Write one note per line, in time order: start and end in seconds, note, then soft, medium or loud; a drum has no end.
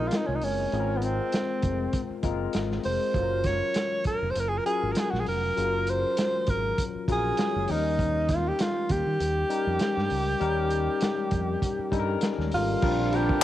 0.00 0.72 G#3 medium
0.00 0.72 C4 medium
0.00 0.73 F4 medium
0.00 0.80 A#4 medium
0.07 0.18 F4 medium
0.07 closed hi-hat medium
0.13 snare medium
0.17 0.27 D#4 medium
0.26 0.39 C2 medium
0.26 0.37 C#4 medium
0.35 0.45 D#4 medium
0.41 0.65 F#1 medium
0.41 0.98 C#4 medium
0.41 open hi-hat medium
0.72 1.19 G#1 loud
0.72 1.68 G#3 medium
0.72 1.69 C4 medium
0.72 1.69 F4 medium
0.72 0.80 G#4 medium
0.72 closed hi-hat medium
0.80 1.72 A#4 medium
0.97 1.05 B3 medium
1.02 2.24 C4 medium
1.02 closed hi-hat medium
1.32 snare loud
1.32 closed hi-hat medium
1.62 1.86 F1 medium
1.62 kick medium
1.62 closed hi-hat medium
1.93 kick medium
1.93 closed hi-hat medium
2.10 muted fingered electric bass stroke soft
2.23 2.47 F#1 medium
2.23 2.96 G#3 medium
2.23 2.96 C4 medium
2.23 2.97 F4 medium
2.23 2.97 A#4 medium
2.23 kick medium
2.23 closed hi-hat medium
2.53 2.78 G#1 medium
2.53 snare medium
2.53 closed hi-hat medium
2.71 snare soft
2.83 2.97 F1 medium
2.83 3.48 C5 medium
2.83 open hi-hat medium
3.14 3.61 F#1 medium
3.14 4.11 F#3 medium
3.14 4.11 C#4 medium
3.14 4.11 F4 medium
3.14 3.22 A4 medium
3.14 kick medium
3.14 closed hi-hat medium
3.22 4.15 A#4 medium
3.44 4.06 C#5 loud
3.44 kick medium
3.44 snare soft
3.44 closed hi-hat medium
3.74 snare medium
3.74 closed hi-hat medium
4.04 4.32 A#4 medium
4.04 muted fingered electric bass stroke soft
4.04 kick medium
4.04 closed hi-hat medium
4.22 4.33 F1 medium
4.30 4.41 C5 medium
4.35 4.59 F#1 medium
4.35 closed hi-hat medium
4.40 4.50 A#4 medium
4.49 4.59 G#4 medium
4.58 4.65 A#4 medium
4.66 5.38 F#3 medium
4.66 5.39 C#4 medium
4.66 5.39 F4 medium
4.66 4.93 G#4 loud
4.66 5.39 A#4 medium
4.66 closed hi-hat medium
4.83 4.93 G#1 medium
4.92 5.01 A#4 medium
4.92 closed hi-hat medium
4.97 5.12 G#4 medium
4.97 snare loud
5.10 5.23 A#1 medium
5.10 5.21 F#4 medium
5.14 snare soft
5.20 5.27 G#4 medium
5.26 5.50 F1 medium
5.26 5.91 A#4 medium
5.26 open hi-hat medium
5.56 6.03 F#1 medium
5.56 6.52 F#3 medium
5.56 6.53 C#4 medium
5.56 6.53 F4 medium
5.56 5.64 G#4 medium
5.56 closed hi-hat medium
5.64 6.57 A#4 medium
5.87 6.51 C5 loud
5.87 closed hi-hat medium
6.17 snare loud
6.17 closed hi-hat medium
6.46 6.71 G#1 medium
6.46 6.82 A#4 medium
6.46 kick medium
6.46 closed hi-hat medium
6.78 kick medium
6.78 closed hi-hat medium
6.96 muted fingered electric bass stroke soft
7.08 7.31 A#1 medium
7.08 7.68 F#3 medium
7.08 7.67 C#4 medium
7.08 7.69 F4 medium
7.08 7.69 A#4 medium
7.08 kick medium
7.08 closed hi-hat medium
7.12 7.72 G#4 medium
7.37 snare medium
7.37 closed hi-hat medium
7.56 7.66 F#1 medium
7.68 8.51 D#2 medium
7.68 7.75 F3 medium
7.68 8.66 C#4 medium
7.68 8.66 D#4 medium
7.68 8.32 D#4 medium
7.68 8.67 A#4 medium
7.68 open hi-hat medium
7.75 8.69 G3 medium
7.99 kick loud
7.99 closed hi-hat medium
8.29 8.50 F4 medium
8.29 kick medium
8.29 snare soft
8.29 closed hi-hat medium
8.48 8.63 G4 medium
8.59 8.93 F4 medium
8.59 snare loud
8.59 closed hi-hat medium
8.89 9.02 D#2 medium
8.89 12.23 G4 medium
8.89 kick medium
8.89 closed hi-hat medium
9.06 9.17 D#3 medium
9.20 9.43 D#2 medium
9.20 closed hi-hat medium
9.49 10.22 G3 medium
9.49 10.22 C#4 medium
9.49 10.23 D#4 medium
9.49 10.23 A#4 medium
9.49 closed hi-hat medium
9.67 9.77 F2 medium
9.79 snare loud
9.79 closed hi-hat medium
9.97 10.08 G2 medium
9.97 snare soft
10.10 10.34 C#2 medium
10.10 open hi-hat medium
10.40 10.87 D#2 loud
10.40 11.36 G3 medium
10.40 11.37 C#4 medium
10.40 11.37 D#4 medium
10.40 11.37 A#4 medium
10.40 closed hi-hat medium
10.70 closed hi-hat medium
11.01 snare loud
11.01 closed hi-hat medium
11.31 11.55 F2 medium
11.31 kick medium
11.31 closed hi-hat medium
11.62 kick medium
11.62 closed hi-hat medium
11.79 muted fingered electric bass stroke soft
11.91 12.15 G2 medium
11.91 12.64 G3 medium
11.91 12.65 C#4 medium
11.91 12.65 D#4 medium
11.91 11.99 A4 medium
11.91 kick medium
11.91 closed hi-hat medium
11.99 12.68 A#4 loud
12.21 snare medium
12.21 closed hi-hat medium
12.38 12.54 D#2 medium
12.38 snare soft
12.51 12.75 G#1 medium
12.51 13.17 F4 medium
12.51 open hi-hat medium
12.82 13.29 A#1 loud
12.82 13.44 G2 medium
12.82 13.44 D3 medium
12.82 13.44 F3 medium
12.82 13.07 G3 medium
12.82 13.44 A#3 medium
12.82 13.07 C4 medium
12.82 13.44 D4 medium
12.82 13.07 D4 medium
12.82 13.44 D4 medium
12.82 13.07 F4 medium
12.82 13.44 G4 medium
12.82 13.08 A#4 medium
12.82 kick loud
12.82 crash loud
13.12 13.44 G3 medium
13.12 13.44 C4 medium
13.12 13.44 D4 medium
13.12 13.44 F4 medium
13.12 13.44 G4 loud
13.12 13.44 A#4 medium
13.12 closed hi-hat medium
13.29 kick loud